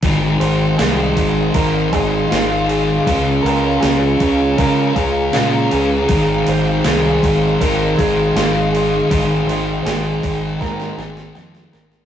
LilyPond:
<<
  \new Staff \with { instrumentName = "Ambient pad" } { \time 4/4 \key aes \major \tempo 4 = 80 << { <ees'' c'''>1 | <des'' bes''>1 | <ees'' c'''>1~ | <ees'' c'''>1 | } \\ { <aes' f''>1~ | <aes' f''>1~ | <aes' f''>1 | <aes' g''>1 | } >> }
  \new Staff \with { instrumentName = "Clean electric guitar" } { \time 4/4 \key aes \major r8 c''8 aes'4 bes'8 aes'8 f'8 aes'8 | r8 bes'8 aes'4 bes'8 aes'8 f'8 aes'8 | r8 c''8 aes'4 bes'8 aes'8 f'8 aes'8 | r8 c''8 aes'4 bes'8 aes'8 g''8 bes'8 | }
  \new Staff \with { instrumentName = "Overdriven electric guitar" } { \time 4/4 \key aes \major <aes, ees aes c' ees' aes'>1 | <des aes des' f' aes'>1 | <aes, ees aes c' ees' aes'>1 | <aes, ees aes c' ees' aes'>1 | }
  \new Staff \with { instrumentName = "Distorted electric guitar" } { \clef bass \time 4/4 \key aes \major <aes, ees aes>4 <aes, ees aes>4 <aes, ees aes>8 <ees aes>8 <aes, ees aes>4 | <des aes des'>4 <des aes des'>4 <des aes des'>8 <aes des'>8 <des aes des'>4 | <aes, ees aes>4 <aes, ees aes>4 <aes, ees aes>8 <ees aes>8 <aes, ees aes>4 | <aes, ees aes>4 <aes, ees aes>4 <aes, ees aes>8 <ees aes>8 <aes, ees aes>4 | }
  \new Staff \with { instrumentName = "Fingered electric bass" } { \clef bass \time 4/4 \key aes \major aes,,8 aes,,8 c,8 aes,,8 aes,,8 aes,,8 aes,,4 | des,8 des,8 des,8 des,8 des8 des,8 bes,8 des,8 | aes,,8 aes,,8 c,8 aes,,8 aes,,8 aes,,8 aes,,4 | aes,,8 aes,,8 aes,,8 aes,,8 aes,8 aes,,8 f,8 aes,,8 | }
  \new DrumStaff \with { instrumentName = "Drums" } \drummode { \time 4/4 <cymc bd>8 cymc8 <cymc sn>8 <cymc bd>8 <cymc bd>8 <cymc bd>8 <cymc sn>8 cymc8 | <cymc bd>8 <cymc sn>8 <cymc sn>8 <cymc bd>8 <cymc bd>8 <cymc bd>8 <cymc sn>8 cymc8 | <cymc bd>8 <cymc sn>8 <cymc sn>8 <cymc bd>8 <cymc bd>8 <cymc bd>8 <cymc sn>8 cymc8 | <cymc bd>8 <cymc sn>8 <cymc sn>8 <cymc bd>8 <bd sn>16 sn16 sn16 sn16 sn16 sn16 sn16 sn16 | }
>>